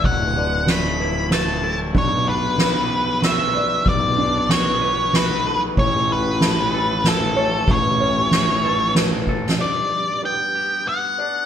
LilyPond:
<<
  \new Staff \with { instrumentName = "Lead electric guitar" } { \time 3/4 \key b \minor \tempo 4 = 94 fis''4 b''4 a''8. r16 | cis''8 b'4. e''4 | d''4 cis''4 b'8. r16 | cis''8 b'4. a'4 |
cis''2 r4 | d''4 g''4 fis''4 | }
  \new Staff \with { instrumentName = "Felt piano" } { \time 3/4 \key b \minor d''8 d''4 b'8 b'8 a'8 | d'4 b'4 r8 d''8~ | d''8 d'4 b'8 b'8 a'8 | cis''4 a'4 r8 cis''8~ |
cis''8 cis''4 b'8 b'8 a'8 | d''4 b'4 r8 d''8 | }
  \new Staff \with { instrumentName = "Clean electric guitar" } { \time 3/4 \key b \minor <d, a e'>8 d8 a8 e'8 a8 e'8 | b,8 d'8 fis'8 b'8 fis'8 b'8 | b,8 d'8 fis'8 b'8 fis'8 b'8 | a,8 cis'8 e'8 a'8 e'8 a'8 |
a,8 cis'8 e'8 a'8 e'8 a'8 | g,4 b8 g'8 b8 d'8 | }
  \new Staff \with { instrumentName = "Fingered electric bass" } { \clef bass \time 3/4 \key b \minor d,,2. | b,,2. | b,,2. | a,,2. |
a,,2. | r2. | }
  \new DrumStaff \with { instrumentName = "Drums" } \drummode { \time 3/4 <bd cymr>4 <cymr sn>4 <cymr sn>4 | <bd cymr>8 cymr8 <cymr sn>4 <cymr sn>4 | <bd cymr>4 <cymr sn>4 <cymr sn>4 | <bd cymr>8 cymr8 <cymr sn>4 <cymr sn>4 |
<bd cymr>4 <cymr sn>4 \tuplet 3/2 { <cymr sn>16 r16 r16 bd16 r16 sn16 } | r4 r4 r4 | }
>>